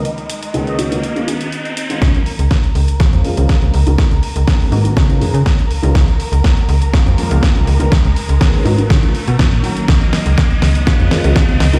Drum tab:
HH |xxxxxxxxxxxxxxxx|xxoxxxoxxxoxxxox|xxoxxooxxxoxxxox|xxoxxxoxxxoxxxox|
SD |----------------|o---o---o---o---|o---o---o---o---|o---o---o---o---|
BD |----------------|o---o---o---o---|o---o---o---o---|o---o---o---o---|

HH |xxoxxooxxxoxxxox|xxoxxxoxxxoxxxox|
SD |o---o---o---o---|o-o-o-o-o-o-o-o-|
BD |o---o---o---o---|o---o---o---o---|